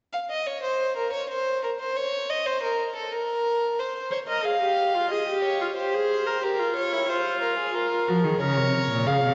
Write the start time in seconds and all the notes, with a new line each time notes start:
0.13 F5
0.30 D#5
0.47 C#5
0.63 C5
0.97 A#4
1.13 C#5
1.30 C5
1.63 A#4
1.80 C5
1.96 C#5
2.30 D#5
2.46 C5
2.63 A#4
2.96 A4
3.13 A#4
3.79 C5
4.11 C5 C#5
4.28 A#4 D#5
4.45 G#4 F5
4.62 G4
4.94 F4
5.11 G#4 D#5
5.28 G4
5.44 C#5
5.61 F4
5.77 G4 C5
5.94 G#4
6.27 A#4
6.43 G4 A#4
6.59 F4
6.76 C#5
6.93 E4
7.09 F4 C5
7.42 A#4
7.58 G#4
7.74 F4 A#4
8.08 F3 F#4
8.24 D#3 G#4
8.40 C#3 A#4 C#5
8.57 C3
8.90 A#2
9.07 C#3 G#4 F5
9.23 C3